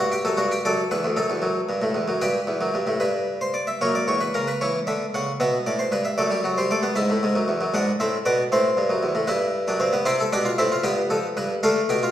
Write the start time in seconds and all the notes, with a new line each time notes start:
Already playing: G2 C5
0.00 F#4
0.12 G4
0.25 F#2 A4
0.37 G2 F#4
0.51 G4
0.65 F#2 A4 D5
0.91 E2 B4
1.04 D2
1.17 F#2 A4
1.30 E2
1.42 F#2
1.69 G2
1.82 A2
1.95 E2
2.08 F#2
2.21 G2 G4 B4
2.47 E2
2.61 F#2
2.74 G2
2.87 A2
3.00 G2 B4
3.41 C5
3.54 D5
3.67 E5
3.81 F#2 A#3 C#5
3.95 D5
4.08 E2 C#5
4.21 B4
4.34 C#3 A#4
4.48 B4
4.61 E3 C#5
4.87 D3 E5
5.14 C#3 F#5
5.40 B2 B3 E5
5.66 A2 D5
5.79 C5
5.92 G2 B4
6.05 E5
6.18 F#2 A3 D5
6.31 G3
6.44 F#3
6.58 G3 C5
6.71 A3 D5
6.83 B3
6.96 G#2 E4 E5
7.10 A2
7.23 G#2
7.35 F#2
7.48 E2
7.61 F#2
7.74 G#2 D4 F#5
8.00 A2 C4 E5
8.26 B2 B3 D5
8.52 A2 C4 C5
8.77 G2
8.90 F#2
9.03 E2
9.15 A2
9.27 G2 E4 B4
9.68 F#2 D4
9.80 G2 C4
9.93 B3
10.05 C3 E4 G4 C5
10.20 A4
10.33 B2 D4 G4 D5
10.45 F4
10.58 A2 C4 E4 E5
10.72 F4
10.84 G2 B3 G4
11.10 F2 A4
11.37 G2 B4
11.63 D3 A3 A4 F5
11.89 B2 G4
12.03 F4